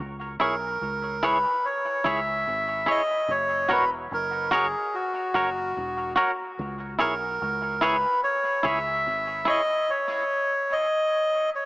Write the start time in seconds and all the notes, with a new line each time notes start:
0.00 C#2
0.40 B1 E4 G#4 A#4 C#5
0.81 C#2
1.23 E4 G#4 B4 C#5
1.65 C#5
2.04 C#2 E4 G#4 C#5 E5
2.47 G#1
2.86 E4 G#4 C#5 D#5
3.28 F#1 C#5
3.69 E1 F#4 A#4 B4 C#5
4.11 F#1 A#4
4.51 F#4 G#4 A#4 C#5
4.94 F#4
5.34 F#1 F#4 A#4 C#5
5.77 E1
6.16 F#4 A#4 C#5
6.59 C#2
6.99 B1 E4 G#4 A#4 C#5
7.42 C#2
7.81 E4 G#4 B4 C#5
8.23 C#5
8.63 C#2 E4 G#4 C#5 E5
9.07 G#1
9.45 E4 G#4 C#5 D#5
9.90 C#5
10.72 D#5
11.55 C#5